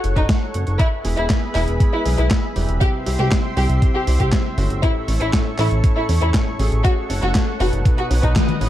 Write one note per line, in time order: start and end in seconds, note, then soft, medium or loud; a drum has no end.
0.00 0.15 F#1 loud
0.00 0.76 A4 medium
0.00 0.76 C#5 medium
0.00 0.78 F#5 medium
0.00 0.76 C#6 medium
0.00 closed hi-hat medium
0.16 0.27 F#1 medium
0.16 0.24 D#4 medium
0.16 kick medium
0.16 closed hi-hat soft
0.29 kick loud
0.29 snare loud
0.29 closed hi-hat medium
0.54 0.65 F#1 medium
0.54 closed hi-hat medium
0.67 0.78 F#1 medium
0.67 closed hi-hat soft
0.79 0.88 E4 loud
0.79 2.79 G#4 medium
0.79 2.79 B4 medium
0.79 6.81 E5 medium
0.79 2.79 B5 medium
0.79 kick loud
0.79 closed hi-hat medium
1.05 1.15 E1 medium
1.05 1.52 G#3 medium
1.05 1.52 B3 medium
1.05 1.52 E4 medium
1.05 1.52 G#4 medium
1.05 open hi-hat loud
1.17 1.28 E1 medium
1.17 1.25 E4 medium
1.17 closed hi-hat soft
1.30 kick loud
1.30 snare loud
1.30 clap medium
1.30 closed hi-hat medium
1.55 1.66 E1 loud
1.55 2.03 G#3 medium
1.55 2.02 B3 medium
1.55 1.63 E4 medium
1.55 2.03 E4 medium
1.55 2.02 G#4 loud
1.55 clap medium
1.55 open hi-hat medium
1.68 1.78 E1 medium
1.68 closed hi-hat soft
1.80 kick loud
1.80 closed hi-hat medium
1.93 2.01 E4 medium
2.05 2.16 B1 medium
2.05 2.53 G#3 medium
2.05 2.53 B3 medium
2.05 2.53 E4 medium
2.05 2.53 G#4 medium
2.05 open hi-hat loud
2.18 2.29 B1 medium
2.18 2.26 E4 medium
2.18 closed hi-hat soft
2.31 kick loud
2.31 snare loud
2.31 clap medium
2.31 closed hi-hat medium
2.56 2.67 E1 loud
2.56 3.03 C3 medium
2.56 3.03 G3 medium
2.56 3.03 C4 medium
2.56 3.03 E4 medium
2.56 3.03 G4 loud
2.56 open hi-hat medium
2.69 2.79 E1 medium
2.69 closed hi-hat medium
2.81 4.81 G4 medium
2.81 2.89 G4 loud
2.81 4.81 C5 medium
2.81 4.81 C6 medium
2.81 kick loud
2.81 closed hi-hat medium
3.06 3.17 C2 medium
3.06 3.54 C3 medium
3.06 3.54 G3 medium
3.06 3.54 C4 medium
3.06 3.54 E4 medium
3.06 3.54 G4 medium
3.06 open hi-hat loud
3.19 3.30 C2 medium
3.19 3.27 G4 loud
3.19 snare soft
3.19 closed hi-hat soft
3.32 kick loud
3.32 snare loud
3.32 clap medium
3.32 closed hi-hat medium
3.57 3.68 C2 medium
3.57 4.04 C3 medium
3.57 4.04 G3 medium
3.57 4.04 C4 medium
3.57 4.04 E4 medium
3.57 4.04 G4 loud
3.57 3.65 G4 medium
3.57 open hi-hat medium
3.70 3.80 C2 medium
3.70 closed hi-hat medium
3.82 kick loud
3.82 closed hi-hat medium
3.95 4.03 G4 medium
4.07 4.18 C2 loud
4.07 4.55 C3 medium
4.07 4.55 G3 medium
4.07 4.55 C4 medium
4.07 4.55 E4 medium
4.07 4.55 G4 medium
4.07 open hi-hat loud
4.20 4.31 C2 medium
4.20 4.28 G4 medium
4.20 kick medium
4.20 closed hi-hat soft
4.33 kick loud
4.33 snare loud
4.33 clap medium
4.33 closed hi-hat medium
4.58 4.68 G1 medium
4.58 5.05 A2 medium
4.58 5.05 A3 medium
4.58 5.05 C#4 medium
4.58 5.05 E4 medium
4.58 5.05 F#4 loud
4.58 open hi-hat medium
4.70 4.81 G1 medium
4.70 closed hi-hat medium
4.83 4.91 E4 loud
4.83 6.83 A4 medium
4.83 7.82 C#5 medium
4.83 7.82 C#6 medium
4.83 kick loud
4.83 closed hi-hat medium
5.08 5.19 A1 medium
5.08 5.56 A2 medium
5.08 5.56 A3 medium
5.08 5.56 C#4 medium
5.08 5.56 E4 medium
5.08 5.56 A4 medium
5.08 open hi-hat loud
5.21 5.31 A1 medium
5.21 5.29 E4 medium
5.21 closed hi-hat medium
5.33 kick loud
5.33 snare loud
5.33 clap medium
5.33 closed hi-hat medium
5.58 5.69 A1 medium
5.58 6.06 A2 medium
5.58 6.06 A3 medium
5.58 6.06 C#4 medium
5.58 5.66 E4 medium
5.58 6.06 E4 medium
5.58 6.06 A4 loud
5.58 clap medium
5.58 open hi-hat medium
5.71 5.82 A1 medium
5.71 closed hi-hat medium
5.84 kick loud
5.84 closed hi-hat medium
5.96 6.04 E4 medium
6.09 6.20 E2 loud
6.09 6.56 A2 medium
6.09 6.56 A3 medium
6.09 6.56 C#4 medium
6.09 6.56 E4 medium
6.09 6.56 A4 medium
6.09 open hi-hat loud
6.21 6.32 E2 medium
6.21 6.29 E4 medium
6.21 closed hi-hat medium
6.34 kick loud
6.34 snare loud
6.34 clap medium
6.34 closed hi-hat medium
6.59 6.70 A1 medium
6.59 7.07 A3 medium
6.59 7.07 C#4 medium
6.59 7.07 F#4 medium
6.59 7.07 G#4 loud
6.59 open hi-hat loud
6.72 6.83 A1 medium
6.72 closed hi-hat medium
6.84 6.93 F#4 loud
6.84 7.84 A4 medium
6.84 7.84 F#5 medium
6.84 kick loud
6.84 closed hi-hat medium
7.10 7.20 F#1 loud
7.10 7.57 A3 medium
7.10 7.57 C#4 medium
7.10 7.57 F#4 medium
7.10 7.57 A4 medium
7.10 open hi-hat loud
7.23 7.33 F#1 medium
7.23 7.31 F#4 medium
7.23 snare soft
7.35 kick loud
7.35 snare loud
7.35 clap medium
7.35 closed hi-hat medium
7.60 7.71 F#1 medium
7.60 8.08 B2 medium
7.60 8.08 B3 medium
7.60 8.08 D#4 medium
7.60 7.68 F#4 medium
7.60 8.08 F#4 medium
7.60 8.08 B4 loud
7.60 open hi-hat medium
7.73 7.84 F#1 medium
7.73 closed hi-hat medium
7.85 8.69 B4 medium
7.85 8.69 D#5 medium
7.85 8.69 F#5 medium
7.85 8.69 D#6 medium
7.85 kick loud
7.85 closed hi-hat medium
7.98 8.06 F#4 medium
7.98 closed hi-hat soft
8.11 8.21 B1 loud
8.11 8.34 B2 medium
8.11 8.34 B3 medium
8.11 8.34 D#4 medium
8.11 8.34 F#4 medium
8.11 8.34 C#5 loud
8.11 open hi-hat loud
8.23 8.34 B1 medium
8.23 8.31 D#4 medium
8.23 kick medium
8.23 closed hi-hat soft
8.36 kick loud
8.36 snare loud
8.36 clap medium
8.36 closed hi-hat medium
8.36 high tom medium
8.49 closed hi-hat soft
8.49 high tom medium
8.61 8.69 A1 medium
8.61 8.69 B3 medium
8.61 8.69 D#4 medium
8.61 8.69 F#4 medium
8.61 8.69 C#5 medium
8.61 open hi-hat medium